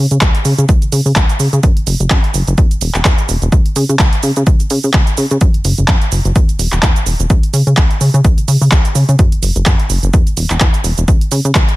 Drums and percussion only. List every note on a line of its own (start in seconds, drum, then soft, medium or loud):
0.11 closed hi-hat soft
0.11 cabasa soft
0.21 kick loud
0.21 clap loud
0.21 closed hi-hat medium
0.21 cabasa soft
0.35 closed hi-hat medium
0.45 open hi-hat medium
0.45 cabasa medium
0.58 closed hi-hat soft
0.58 cabasa soft
0.69 kick loud
0.69 closed hi-hat medium
0.69 cabasa soft
0.82 closed hi-hat medium
0.82 cabasa soft
0.92 open hi-hat loud
0.92 cabasa medium
1.06 cabasa soft
1.16 kick loud
1.16 clap loud
1.16 closed hi-hat medium
1.16 cabasa soft
1.29 closed hi-hat medium
1.29 cabasa soft
1.40 open hi-hat medium
1.40 cabasa medium
1.53 closed hi-hat soft
1.53 cabasa soft
1.63 kick loud
1.63 closed hi-hat medium
1.63 cabasa soft
1.77 closed hi-hat medium
1.87 open hi-hat loud
1.87 cabasa medium
2.00 closed hi-hat soft
2.00 cabasa soft
2.10 kick loud
2.10 clap loud
2.10 closed hi-hat medium
2.10 cabasa soft
2.24 closed hi-hat soft
2.34 open hi-hat medium
2.34 cabasa medium
2.47 closed hi-hat soft
2.47 cabasa soft
2.58 kick loud
2.58 closed hi-hat medium
2.58 cabasa soft
2.71 closed hi-hat medium
2.71 cabasa soft
2.81 open hi-hat loud
2.81 cabasa medium
2.94 clap soft
2.94 closed hi-hat soft
2.94 cabasa soft
3.05 kick loud
3.05 clap loud
3.05 closed hi-hat medium
3.05 cabasa soft
3.18 closed hi-hat medium
3.18 cabasa soft
3.29 open hi-hat medium
3.29 cabasa medium
3.42 closed hi-hat soft
3.42 cabasa soft
3.52 kick loud
3.52 closed hi-hat medium
3.52 cabasa soft
3.66 closed hi-hat medium
3.76 open hi-hat loud
3.76 cabasa medium
3.89 closed hi-hat soft
3.89 cabasa soft
3.99 kick loud
3.99 clap loud
3.99 closed hi-hat medium
3.99 cabasa soft
4.13 closed hi-hat medium
4.23 open hi-hat medium
4.23 cabasa medium
4.36 closed hi-hat soft
4.36 cabasa soft
4.47 kick loud
4.47 closed hi-hat medium
4.47 cabasa soft
4.60 closed hi-hat soft
4.60 cabasa soft
4.70 open hi-hat loud
4.70 cabasa medium
4.83 cabasa soft
4.93 kick loud
4.93 clap loud
4.93 closed hi-hat medium
4.93 cabasa soft
5.07 closed hi-hat medium
5.07 cabasa soft
5.17 open hi-hat loud
5.17 cabasa medium
5.31 closed hi-hat soft
5.31 cabasa soft
5.41 kick loud
5.41 closed hi-hat medium
5.41 cabasa soft
5.54 closed hi-hat medium
5.65 open hi-hat loud
5.65 cabasa medium
5.78 closed hi-hat soft
5.78 cabasa soft
5.88 kick loud
5.88 clap loud
5.88 closed hi-hat medium
5.88 cabasa soft
6.02 closed hi-hat soft
6.12 open hi-hat medium
6.12 cabasa medium
6.25 closed hi-hat soft
6.25 cabasa soft
6.36 kick loud
6.36 closed hi-hat medium
6.36 cabasa soft
6.49 closed hi-hat medium
6.49 cabasa soft
6.59 open hi-hat loud
6.59 cabasa medium
6.72 clap soft
6.72 closed hi-hat soft
6.72 cabasa soft
6.83 kick loud
6.83 clap loud
6.83 closed hi-hat medium
6.83 cabasa soft
6.96 closed hi-hat medium
6.96 cabasa soft
7.06 open hi-hat medium
7.06 cabasa medium
7.20 closed hi-hat soft
7.20 cabasa soft
7.30 kick loud
7.30 closed hi-hat medium
7.30 cabasa soft
7.43 closed hi-hat medium
7.54 open hi-hat loud
7.54 cabasa medium
7.67 closed hi-hat soft
7.67 cabasa soft
7.77 kick loud
7.77 clap loud
7.77 closed hi-hat medium
7.77 cabasa soft
7.91 closed hi-hat soft
8.01 open hi-hat medium
8.01 cabasa medium
8.14 closed hi-hat soft
8.14 cabasa soft
8.24 kick loud
8.24 closed hi-hat medium
8.24 cabasa soft
8.38 closed hi-hat medium
8.38 cabasa soft
8.48 open hi-hat loud
8.48 cabasa medium
8.62 cabasa soft
8.71 kick loud
8.71 clap loud
8.71 closed hi-hat medium
8.71 cabasa soft
8.85 closed hi-hat medium
8.85 cabasa soft
8.95 open hi-hat medium
8.95 cabasa medium
9.09 closed hi-hat soft
9.09 cabasa soft
9.19 kick loud
9.19 closed hi-hat medium
9.19 cabasa soft
9.32 closed hi-hat medium
9.43 open hi-hat loud
9.43 cabasa medium
9.56 closed hi-hat soft
9.56 cabasa soft
9.66 kick loud
9.66 clap loud
9.66 closed hi-hat medium
9.66 cabasa soft
9.79 closed hi-hat medium
9.90 open hi-hat medium
9.90 cabasa medium
10.03 closed hi-hat soft
10.03 cabasa soft
10.14 kick loud
10.14 closed hi-hat medium
10.14 cabasa soft
10.27 closed hi-hat medium
10.27 cabasa soft
10.37 open hi-hat loud
10.37 cabasa medium
10.50 clap soft
10.50 closed hi-hat soft
10.50 cabasa soft
10.60 kick loud
10.60 clap loud
10.60 closed hi-hat medium
10.60 cabasa soft
10.74 closed hi-hat medium
10.74 cabasa soft
10.84 open hi-hat medium
10.84 cabasa medium
10.98 closed hi-hat soft
10.98 cabasa soft
11.08 kick loud
11.08 closed hi-hat medium
11.08 cabasa soft
11.21 closed hi-hat medium
11.32 open hi-hat loud
11.32 cabasa medium
11.45 closed hi-hat soft
11.45 cabasa soft
11.55 kick loud
11.55 clap loud
11.55 closed hi-hat medium
11.55 cabasa soft
11.69 closed hi-hat medium